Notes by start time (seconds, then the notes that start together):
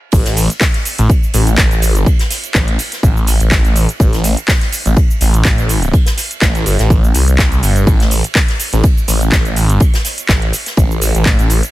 0.12 A1, kick, crash, ride, cabasa
0.25 snare, closed hi-hat, cabasa
0.37 open hi-hat, ride, cabasa
0.50 closed hi-hat, cabasa
0.60 kick, snare, clap, open hi-hat, cabasa
0.74 snare, closed hi-hat
0.85 open hi-hat, ride, cabasa
0.98 A1, closed hi-hat, cabasa
1.09 kick, ride, cabasa
1.23 cabasa
1.34 A1, open hi-hat, ride, cabasa
1.47 closed hi-hat, cabasa
1.57 A1, kick, snare, clap, ride, cabasa
1.71 closed hi-hat, cabasa
1.82 open hi-hat, ride, cabasa
1.95 closed hi-hat, cabasa
2.06 kick, ride, cabasa
2.19 snare, closed hi-hat, cabasa
2.30 snare, open hi-hat, ride, cabasa
2.44 closed hi-hat, cabasa
2.54 A1, kick, snare, clap, ride, cabasa
2.68 closed hi-hat, ride
2.79 open hi-hat, ride, cabasa
2.92 snare, closed hi-hat, cabasa
3.03 A1, kick, ride, cabasa
3.17 cabasa
3.27 open hi-hat, ride, cabasa
3.40 A1, closed hi-hat, cabasa
3.51 kick, snare, clap, ride, cabasa
3.64 A1, closed hi-hat, ride, cabasa
3.76 open hi-hat, ride, cabasa
3.89 closed hi-hat, cabasa
4.00 A1, kick, ride, cabasa
4.13 snare, closed hi-hat, cabasa
4.24 open hi-hat, ride, cabasa
4.37 closed hi-hat, cabasa
4.48 kick, snare, clap, open hi-hat, cabasa
4.61 snare, closed hi-hat
4.72 open hi-hat, ride, cabasa
4.86 A1, closed hi-hat, cabasa
4.96 kick, ride, cabasa
5.11 cabasa
5.21 A1, open hi-hat, ride, cabasa
5.34 closed hi-hat, cabasa
5.45 A1, kick, snare, clap, ride, cabasa
5.58 closed hi-hat, cabasa
5.69 open hi-hat, ride, cabasa
5.82 closed hi-hat, cabasa
5.93 kick, ride, cabasa
6.06 snare, closed hi-hat, cabasa
6.17 snare, open hi-hat, ride, cabasa
6.31 closed hi-hat, cabasa
6.41 A1, kick, snare, clap, ride, cabasa
6.55 closed hi-hat, ride, cabasa
6.66 G1, open hi-hat, ride, cabasa
6.79 A1, snare, closed hi-hat, cabasa
6.90 kick, ride, cabasa
7.04 cabasa
7.14 C2, open hi-hat, ride, cabasa
7.28 closed hi-hat, cabasa
7.39 kick, snare, clap, ride, cabasa
7.52 closed hi-hat, ride, cabasa
7.63 G1, open hi-hat, ride, cabasa
7.76 closed hi-hat, cabasa
7.87 A1, kick, ride, cabasa
8.00 snare, closed hi-hat, cabasa
8.11 open hi-hat, ride, cabasa
8.24 closed hi-hat, cabasa
8.35 kick, snare, clap, open hi-hat, cabasa
8.48 snare, closed hi-hat
8.60 open hi-hat, ride, cabasa
8.73 A1, closed hi-hat, cabasa
8.83 kick, ride, cabasa
8.98 cabasa
9.08 A1, open hi-hat, ride, cabasa
9.21 closed hi-hat, cabasa
9.32 A1, kick, snare, clap, ride, cabasa
9.45 closed hi-hat, cabasa
9.56 open hi-hat, ride, cabasa
9.69 closed hi-hat, cabasa
9.80 kick, ride, cabasa
9.94 snare, closed hi-hat, cabasa
10.05 snare, open hi-hat, ride, cabasa
10.18 closed hi-hat, cabasa
10.29 A1, kick, snare, clap, ride, cabasa
10.42 closed hi-hat, ride
10.53 open hi-hat, ride, cabasa
10.66 snare, closed hi-hat, cabasa
10.77 A1, kick, ride, cabasa
10.91 cabasa
11.02 open hi-hat, ride, cabasa
11.15 A1, closed hi-hat, cabasa
11.25 kick, snare, clap, ride, cabasa
11.39 A1, closed hi-hat, ride, cabasa
11.50 open hi-hat, ride, cabasa
11.63 closed hi-hat, cabasa